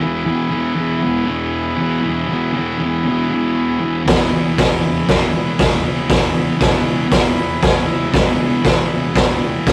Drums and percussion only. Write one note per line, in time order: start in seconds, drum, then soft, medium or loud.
4.08 kick loud
4.08 snare loud
4.08 open hi-hat medium
4.58 kick loud
4.58 snare loud
4.58 open hi-hat medium
5.09 kick loud
5.09 snare loud
5.09 open hi-hat medium
5.59 kick loud
5.59 snare loud
5.59 open hi-hat medium
6.10 kick loud
6.10 snare loud
6.10 open hi-hat medium
6.61 kick loud
6.61 snare loud
6.61 open hi-hat medium
7.12 kick loud
7.12 snare loud
7.12 open hi-hat medium
7.63 kick loud
7.63 snare loud
7.63 open hi-hat soft
8.14 kick loud
8.14 snare loud
8.14 open hi-hat medium
8.65 kick medium
8.65 snare loud
8.65 open hi-hat medium
9.16 kick loud
9.16 snare loud
9.16 open hi-hat medium
9.67 kick loud
9.67 snare loud
9.67 open hi-hat medium